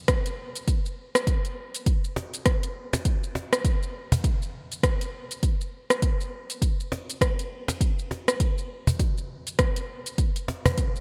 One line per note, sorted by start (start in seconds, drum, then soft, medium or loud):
0.08 kick loud
0.08 cross-stick medium
0.08 closed hi-hat medium
0.08 shaker medium
0.26 closed hi-hat soft
0.26 shaker soft
0.55 closed hi-hat soft
0.55 shaker medium
0.68 kick medium
0.68 closed hi-hat medium
0.68 shaker medium
0.86 shaker soft
1.15 cross-stick medium
1.15 closed hi-hat soft
1.15 shaker medium
1.27 kick medium
1.27 closed hi-hat medium
1.27 shaker medium
1.45 closed hi-hat soft
1.45 shaker soft
1.75 closed hi-hat soft
1.75 shaker medium
1.86 kick loud
1.86 closed hi-hat medium
1.86 shaker medium
2.04 shaker soft
2.16 cajon slap medium
2.34 closed hi-hat soft
2.34 shaker medium
2.46 kick loud
2.46 cross-stick medium
2.46 closed hi-hat medium
2.46 shaker medium
2.63 closed hi-hat soft
2.63 shaker soft
2.93 cajon slap medium
2.93 closed hi-hat soft
2.93 shaker medium
3.05 kick medium
3.05 closed hi-hat medium
3.05 shaker soft
3.24 shaker soft
3.35 cajon slap medium
3.53 cross-stick medium
3.53 closed hi-hat soft
3.53 shaker medium
3.65 kick loud
3.65 closed hi-hat medium
3.65 shaker medium
3.83 shaker soft
4.12 cajon bass medium
4.12 closed hi-hat soft
4.12 shaker medium
4.24 kick loud
4.24 cajon slap soft
4.24 closed hi-hat medium
4.24 shaker soft
4.42 shaker soft
4.72 closed hi-hat soft
4.72 shaker medium
4.83 kick loud
4.83 cross-stick medium
4.83 closed hi-hat medium
4.83 shaker medium
5.01 closed hi-hat soft
5.01 shaker soft
5.31 closed hi-hat soft
5.31 shaker medium
5.43 kick medium
5.43 closed hi-hat medium
5.43 shaker soft
5.61 shaker soft
5.90 cross-stick medium
5.90 closed hi-hat soft
5.90 shaker medium
6.02 kick medium
6.02 closed hi-hat medium
6.02 shaker medium
6.21 shaker soft
6.50 closed hi-hat soft
6.50 shaker medium
6.62 kick medium
6.62 closed hi-hat medium
6.62 shaker medium
6.80 shaker soft
6.92 cajon slap medium
7.10 closed hi-hat soft
7.10 shaker medium
7.21 kick loud
7.21 cross-stick medium
7.21 closed hi-hat medium
7.21 shaker medium
7.39 closed hi-hat soft
7.39 shaker soft
7.68 cajon slap medium
7.68 closed hi-hat soft
7.68 shaker medium
7.81 kick loud
7.81 closed hi-hat medium
7.81 shaker medium
7.99 shaker soft
8.11 cajon slap medium
8.28 cross-stick medium
8.28 closed hi-hat soft
8.28 shaker medium
8.40 kick medium
8.40 closed hi-hat medium
8.40 shaker medium
8.58 shaker soft
8.87 cajon bass medium
8.87 closed hi-hat soft
8.87 shaker medium
8.99 kick medium
8.99 cajon slap medium
8.99 closed hi-hat medium
8.99 shaker medium
9.18 shaker soft
9.47 closed hi-hat soft
9.47 shaker medium
9.59 kick loud
9.59 cross-stick medium
9.59 closed hi-hat medium
9.59 shaker medium
9.76 closed hi-hat soft
9.76 shaker soft
10.06 closed hi-hat soft
10.06 shaker medium
10.18 kick medium
10.18 closed hi-hat medium
10.18 shaker soft
10.36 closed hi-hat soft
10.36 shaker soft
10.48 cajon slap medium
10.66 cajon bass medium
10.66 cross-stick medium
10.66 closed hi-hat soft
10.66 shaker medium
10.78 kick medium
10.78 cajon slap soft
10.78 closed hi-hat medium
10.78 shaker medium
10.96 shaker soft